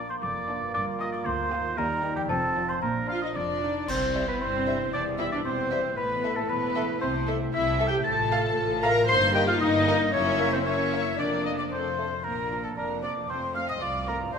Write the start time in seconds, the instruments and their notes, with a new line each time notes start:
Already playing: double bass section A#1, cello section A#2, harp A#2 F3 A#3 F4 A#4, viola section A#3, french horn section A#3 F4, bassoon A#3, violin section D4 F4, clarinet F4, flute D6
0.09 oboe C5, flute C6, celesta C6
0.22 double bass section F1, cello section F2, oboe D5, flute D6, celesta D6
0.48 viola section A#3, violin section D4 F4
0.56 harp G2
0.61 harp A#3
0.65 harp F4
0.70 harp A#4
0.74 double bass section G1, cello section G2, oboe D5, flute D6, celesta D6
1.00 viola section A#3, violin section F4 G4, oboe D#5, flute D#6, celesta D#6
1.12 oboe D5, flute D6, celesta D6
1.25 cello section D2, double bass section D2, oboe C5, flute C6, celesta C6
1.51 viola section A#3, violin section F4 G4
1.60 harp D#3
1.64 harp A#3
1.69 harp D#4
1.73 harp G4
1.78 double bass section D#2, cello section D#2, french horn section G3 D#4, bassoon G3, clarinet D#4, oboe A#4, flute A#5, celesta A#5
2.03 viola section A#3, violin section D#4 G4
2.12 harp F2
2.16 harp F3, oboe G4, flute G5, celesta G5
2.21 harp C4
2.25 harp F4
2.29 double bass section F1, cello section F2, bassoon F3, french horn section F3 C4, clarinet C4, oboe A4, celesta A5, flute A5
2.56 viola section F3, violin section C4 F4
2.64 harp A#2
2.69 harp F3, oboe C5, flute C6, celesta C6
2.73 harp D4
2.78 harp F4
2.82 double bass section A#1, cello section A#2, french horn section D4, clarinet D4, oboe A#4, celesta A#5, flute A#5
3.08 viola section F3 F4, violin section D4 F4 F5, oboe F5, flute F5, celesta F6
3.22 viola section D#4, oboe D#5, violin section D#5, flute D#5, celesta D#6
3.35 double bass section F1, cello section F2, viola section D4, clarinet F4, violin section D5, flute D5, oboe D5, celesta D6
3.62 viola section F3, violin section D4 F4, clarinet D#4
3.88 cello section C2, double bass section C2, harp C3, french horn section G3 E4, viola section C4, flute C5, violin section C5, oboe C5, celesta C6, concert bass drum, crash
4.02 harp G3
4.14 bassoon G3, harp E4, violin section C5 E5, clarinet E5
4.27 viola section B3, flute B4, violin section B4, oboe B4, harp C5, celesta B5
4.40 double bass section G1, cello section G2, viola section C4, flute C5, violin section C5, oboe C5, harp E5, celesta C6
4.54 harp C5
4.67 bassoon G3, violin section C5 E5, harp E5, clarinet E5
4.80 harp C5
4.92 double bass section E1, cello section E2, harp E3, viola section D4, flute D5, violin section D5, oboe D5, celesta D6
5.06 harp C4
5.18 bassoon G3, viola section E4, harp G4, violin section C5 E5, flute E5, oboe E5, clarinet E5, celesta E6
5.32 viola section D4, violin section D5, oboe D5, flute D5, harp E5, celesta D6
5.44 double bass section E1, cello section E2, viola section C4, violin section C5, flute C5, oboe C5, harp G5, celesta C6
5.58 harp C6
5.71 bassoon G3, violin section C5 E5, clarinet E5, harp G5
5.84 harp E5
5.96 double bass section A1, harp A2, cello section A2, french horn section A3 E4, viola section B3, flute B4, violin section B4, oboe B4, celesta B5
6.10 harp E3
6.24 bassoon A3, harp E4, violin section A4 E5, clarinet E5
6.36 viola section A3, flute A4, violin section A4, oboe A4, harp C5, celesta A5
6.49 double bass section E1, cello section E2, viola section B3, violin section B4, flute B4, oboe B4, harp E5, celesta B5
6.63 harp A5
6.76 bassoon A3, violin section A4 E5, harp E5, clarinet E5
6.89 harp C5
7.00 double bass section C2, cello section C3, harp C3, viola section C4, violin section C5, flute C5, oboe C5, celesta C6
7.15 harp A3
7.28 bassoon A3, harp E4, violin section A4 E5, clarinet E5
7.41 harp C5
7.54 double bass section C2, cello section C3, viola section E4, violin section E5, flute E5, harp E5, oboe E5, celesta E6
7.67 harp A5
7.80 bassoon A3, violin section A4 E5, harp E5, clarinet E5
7.87 viola section G4, flute G5, oboe G5, violin section G5, celesta G6
7.93 harp C5
8.04 double bass section A1, cello section A2, harp A2, french horn section A3 F4, viola section A4, flute A5, oboe A5, violin section A5, celesta A6
8.19 harp A3
8.31 bassoon A3, harp F4, violin section A4 F5, clarinet F5
8.44 harp C5
8.57 double bass section A1, cello section A2, harp F5
8.70 harp A5
8.82 bassoon A3, violin section A4 F5 A#5, viola section A#4, clarinet F5, harp F5, flute A#5, oboe A#5, celesta A#6
8.96 harp C5
9.09 double bass section G1, harp G2, cello section G2, french horn section A#3 D#4, viola section C5, flute C6, oboe C6, violin section C6, celesta C7
9.22 harp G3
9.35 bassoon A#3, harp D#4, viola section G4, violin section A#4 D#5 G5, clarinet D#5, oboe G5, flute G5, celesta G6
9.47 viola section F4, harp A#4, flute F5, oboe F5, violin section F5, celesta F6
9.60 double bass section G1, cello section G2, viola section D#4, flute D#5, oboe D#5, harp D#5, violin section D#5, celesta D#6
9.74 harp A#5
9.87 bassoon A#3, violin section A#4 D#5, clarinet D#5, harp D#5
10.00 harp A#4
10.12 double bass section F#1, cello section F#2, harp F#2, french horn section A#3 E4, viola section C#4, violin section A#4 C#5 E5, flute C#5, oboe C#5, celesta C#6
10.27 harp C#3
10.39 bassoon A#3, harp E4, clarinet E5
10.52 viola section C4, flute C5, violin section C5, oboe C5, harp C#5, celesta C6
10.64 french horn section A#3 E4, viola section C#4, violin section A#4 C#5 E5, flute C#5, oboe C#5, harp E5, celesta C#6
10.79 harp A#5
10.92 bassoon A#3, harp E5, clarinet E5
11.06 harp C#5
11.17 double bass section F1, harp F2, cello section F2, french horn section A#3 D4, viola section D4, violin section A#4 D5, flute D5, oboe D5, celesta D6
11.32 harp F3
11.43 bassoon A#3, harp F4, clarinet D5, oboe D#5, violin section D#5, flute D#6
11.58 harp A#4, violin section D5, oboe D5, flute D6
11.71 harp F2, french horn section A3 C4, violin section A4 C5, oboe C5, flute C6
11.85 harp C3
11.98 bassoon A3, harp F4, clarinet C5
12.06 harp A#2
12.10 harp D4 C5
12.15 harp F4
12.20 harp A#4
12.24 double bass section A#1, cello section A#2, french horn section A#3 D4, oboe A#4, violin section A#4, flute A#5
12.51 viola section F3 D4, violin section F4
12.63 violin section A4, oboe A4, flute A5
12.77 double bass section F1, cello section F2, bassoon D4, violin section A#4, oboe A#4, flute A#5
13.02 viola section F3 D4, violin section F4 D5, oboe D5, flute D6
13.10 harp F2
13.15 harp C4
13.20 harp F4
13.24 harp A4
13.29 double bass section F1, cello section F2, french horn section A3 C4, bassoon C4, violin section C5, oboe C5, flute C6
13.55 viola section A3 C4, violin section F4 F5, oboe F5, flute F6
13.68 violin section D#5, oboe D#5, flute D#6
13.81 cello section C2, double bass section C2, bassoon F4, oboe D5, violin section D5, flute D6
14.06 viola section A3 C4, violin section F4 A#4, oboe A#4, flute A#5
14.14 harp G2
14.19 harp A#3
14.24 harp D4
14.28 harp G4
14.33 double bass section G1, cello section G2, viola section G3 A#3, french horn section A#3 D4, violin section D4 C5, bassoon D4, oboe C5, flute C6